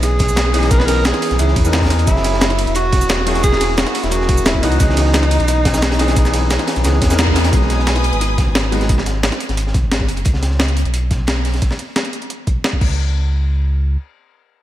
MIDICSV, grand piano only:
0, 0, Header, 1, 2, 480
1, 0, Start_track
1, 0, Tempo, 340909
1, 1000, Time_signature, 4, 2, 24, 8
1, 20592, End_track
2, 0, Start_track
2, 0, Title_t, "Grand piano"
2, 0, Program_c, 0, 0
2, 0, Control_c, 0, 64, 127
2, 0, Note_on_c, 0, 52, 82
2, 0, Note_on_c, 0, 59, 76
2, 0, Note_on_c, 0, 61, 77
2, 0, Note_on_c, 0, 68, 93
2, 0, Note_on_c, 0, 75, 78
2, 714, Note_off_c, 0, 52, 0
2, 723, Note_off_c, 0, 59, 0
2, 731, Note_off_c, 0, 61, 0
2, 740, Note_off_c, 0, 75, 0
2, 741, Note_on_c, 0, 52, 98
2, 749, Note_off_c, 0, 68, 0
2, 750, Note_on_c, 0, 59, 88
2, 759, Note_on_c, 0, 61, 90
2, 767, Note_on_c, 0, 63, 90
2, 776, Note_on_c, 0, 68, 106
2, 959, Note_off_c, 0, 52, 0
2, 967, Note_off_c, 0, 59, 0
2, 971, Note_off_c, 0, 61, 0
2, 975, Note_off_c, 0, 63, 0
2, 980, Note_off_c, 0, 68, 0
2, 981, Note_on_c, 0, 52, 82
2, 990, Note_on_c, 0, 59, 78
2, 999, Note_on_c, 0, 61, 79
2, 1008, Note_on_c, 0, 63, 78
2, 1017, Note_on_c, 0, 68, 93
2, 1105, Note_off_c, 0, 52, 0
2, 1110, Note_off_c, 0, 59, 0
2, 1114, Note_off_c, 0, 61, 0
2, 1118, Note_off_c, 0, 63, 0
2, 1123, Note_off_c, 0, 68, 0
2, 1944, Note_on_c, 0, 52, 78
2, 1952, Note_on_c, 0, 59, 69
2, 1960, Note_on_c, 0, 61, 71
2, 1969, Note_on_c, 0, 63, 69
2, 1978, Note_on_c, 0, 68, 84
2, 2284, Note_off_c, 0, 52, 0
2, 2292, Note_off_c, 0, 59, 0
2, 2298, Note_off_c, 0, 61, 0
2, 2303, Note_off_c, 0, 63, 0
2, 2305, Note_on_c, 0, 52, 90
2, 2307, Note_off_c, 0, 68, 0
2, 2313, Note_on_c, 0, 59, 84
2, 2323, Note_on_c, 0, 61, 84
2, 2332, Note_on_c, 0, 63, 86
2, 2340, Note_on_c, 0, 70, 98
2, 2400, Note_off_c, 0, 52, 0
2, 2407, Note_off_c, 0, 59, 0
2, 2412, Note_off_c, 0, 61, 0
2, 2416, Note_off_c, 0, 63, 0
2, 2420, Note_off_c, 0, 70, 0
2, 2421, Note_on_c, 0, 52, 88
2, 2430, Note_on_c, 0, 59, 83
2, 2439, Note_on_c, 0, 61, 80
2, 2448, Note_on_c, 0, 63, 84
2, 2456, Note_on_c, 0, 68, 94
2, 2883, Note_off_c, 0, 52, 0
2, 2886, Note_on_c, 0, 54, 84
2, 2887, Note_off_c, 0, 59, 0
2, 2891, Note_off_c, 0, 61, 0
2, 2896, Note_off_c, 0, 63, 0
2, 2900, Note_off_c, 0, 68, 0
2, 2903, Note_on_c, 0, 58, 73
2, 2921, Note_on_c, 0, 61, 76
2, 2936, Control_c, 0, 64, 0
2, 2938, Note_on_c, 0, 64, 78
2, 2956, Note_on_c, 0, 68, 93
2, 3147, Control_c, 0, 64, 127
2, 4555, Note_off_c, 0, 54, 0
2, 4563, Note_off_c, 0, 58, 0
2, 4572, Note_off_c, 0, 61, 0
2, 4581, Note_off_c, 0, 64, 0
2, 4581, Note_on_c, 0, 54, 101
2, 4590, Note_off_c, 0, 68, 0
2, 4590, Note_on_c, 0, 58, 89
2, 4599, Note_on_c, 0, 61, 89
2, 4607, Note_on_c, 0, 64, 89
2, 4617, Note_on_c, 0, 68, 114
2, 4801, Note_off_c, 0, 54, 0
2, 4807, Note_off_c, 0, 58, 0
2, 4811, Note_off_c, 0, 61, 0
2, 4816, Note_off_c, 0, 64, 0
2, 4820, Note_off_c, 0, 68, 0
2, 4822, Note_on_c, 0, 54, 84
2, 4831, Note_on_c, 0, 58, 76
2, 4840, Note_on_c, 0, 61, 78
2, 4849, Note_on_c, 0, 64, 78
2, 4858, Note_on_c, 0, 68, 92
2, 4945, Note_off_c, 0, 54, 0
2, 4950, Note_off_c, 0, 58, 0
2, 4954, Note_off_c, 0, 61, 0
2, 4959, Note_off_c, 0, 64, 0
2, 4963, Note_off_c, 0, 68, 0
2, 5763, Note_on_c, 0, 54, 81
2, 5781, Note_on_c, 0, 58, 72
2, 5799, Note_on_c, 0, 61, 73
2, 5816, Note_on_c, 0, 64, 70
2, 5833, Note_on_c, 0, 68, 86
2, 6473, Note_off_c, 0, 54, 0
2, 6482, Note_off_c, 0, 58, 0
2, 6491, Note_off_c, 0, 61, 0
2, 6500, Note_off_c, 0, 64, 0
2, 6503, Note_on_c, 0, 52, 92
2, 6508, Note_off_c, 0, 68, 0
2, 6511, Note_on_c, 0, 59, 88
2, 6520, Note_on_c, 0, 61, 87
2, 6528, Note_on_c, 0, 63, 89
2, 6538, Note_on_c, 0, 66, 103
2, 6541, Control_c, 0, 64, 0
2, 6704, Note_off_c, 0, 52, 0
2, 6721, Note_off_c, 0, 59, 0
2, 6725, Note_on_c, 0, 52, 83
2, 6732, Note_off_c, 0, 61, 0
2, 6736, Note_off_c, 0, 63, 0
2, 6741, Note_off_c, 0, 66, 0
2, 6742, Note_on_c, 0, 59, 78
2, 6761, Note_on_c, 0, 61, 76
2, 6771, Control_c, 0, 64, 127
2, 6777, Note_on_c, 0, 63, 75
2, 6795, Note_on_c, 0, 68, 95
2, 8394, Note_off_c, 0, 52, 0
2, 8403, Note_off_c, 0, 59, 0
2, 8412, Note_off_c, 0, 61, 0
2, 8420, Note_off_c, 0, 63, 0
2, 8421, Note_on_c, 0, 52, 100
2, 8429, Note_off_c, 0, 68, 0
2, 8430, Note_on_c, 0, 59, 91
2, 8438, Note_on_c, 0, 61, 89
2, 8447, Note_on_c, 0, 63, 89
2, 8456, Note_on_c, 0, 68, 108
2, 8639, Note_off_c, 0, 52, 0
2, 8647, Note_off_c, 0, 59, 0
2, 8651, Note_off_c, 0, 61, 0
2, 8655, Note_off_c, 0, 63, 0
2, 8660, Note_off_c, 0, 68, 0
2, 8660, Note_on_c, 0, 52, 83
2, 8668, Note_on_c, 0, 59, 78
2, 8677, Note_on_c, 0, 61, 77
2, 8686, Note_on_c, 0, 63, 78
2, 8695, Note_on_c, 0, 68, 93
2, 8784, Note_off_c, 0, 52, 0
2, 8788, Note_off_c, 0, 59, 0
2, 8793, Note_off_c, 0, 61, 0
2, 8797, Note_off_c, 0, 63, 0
2, 8802, Note_off_c, 0, 68, 0
2, 9622, Note_on_c, 0, 52, 78
2, 9631, Note_on_c, 0, 59, 68
2, 9639, Note_on_c, 0, 61, 71
2, 9648, Note_on_c, 0, 63, 70
2, 9657, Note_on_c, 0, 68, 89
2, 9962, Note_off_c, 0, 52, 0
2, 9972, Note_off_c, 0, 59, 0
2, 9978, Note_off_c, 0, 61, 0
2, 9982, Note_off_c, 0, 63, 0
2, 9984, Note_on_c, 0, 52, 89
2, 9987, Note_off_c, 0, 68, 0
2, 9993, Note_on_c, 0, 59, 84
2, 10002, Note_on_c, 0, 61, 85
2, 10011, Note_on_c, 0, 63, 85
2, 10019, Note_on_c, 0, 70, 102
2, 10082, Note_off_c, 0, 52, 0
2, 10087, Note_off_c, 0, 59, 0
2, 10092, Note_off_c, 0, 61, 0
2, 10096, Note_off_c, 0, 63, 0
2, 10100, Note_off_c, 0, 70, 0
2, 10103, Note_on_c, 0, 52, 87
2, 10111, Note_on_c, 0, 59, 82
2, 10120, Note_on_c, 0, 61, 83
2, 10128, Note_on_c, 0, 63, 81
2, 10137, Note_on_c, 0, 68, 97
2, 10563, Note_off_c, 0, 52, 0
2, 10564, Note_on_c, 0, 54, 76
2, 10567, Note_off_c, 0, 59, 0
2, 10572, Note_off_c, 0, 61, 0
2, 10576, Note_off_c, 0, 63, 0
2, 10580, Note_off_c, 0, 68, 0
2, 10582, Note_on_c, 0, 56, 73
2, 10600, Note_on_c, 0, 59, 73
2, 10615, Control_c, 0, 64, 0
2, 10618, Note_on_c, 0, 63, 73
2, 10635, Note_on_c, 0, 68, 87
2, 10897, Control_c, 0, 64, 127
2, 12234, Note_off_c, 0, 54, 0
2, 12243, Note_off_c, 0, 56, 0
2, 12252, Note_off_c, 0, 59, 0
2, 12261, Note_off_c, 0, 63, 0
2, 12263, Note_on_c, 0, 54, 91
2, 12269, Note_off_c, 0, 68, 0
2, 12272, Note_on_c, 0, 56, 85
2, 12280, Note_on_c, 0, 59, 82
2, 12288, Note_on_c, 0, 63, 83
2, 12297, Note_on_c, 0, 68, 100
2, 12483, Note_off_c, 0, 54, 0
2, 12488, Note_off_c, 0, 56, 0
2, 12492, Note_off_c, 0, 59, 0
2, 12496, Note_off_c, 0, 63, 0
2, 12500, Note_off_c, 0, 68, 0
2, 12541, Control_c, 0, 64, 0
2, 20592, End_track
0, 0, End_of_file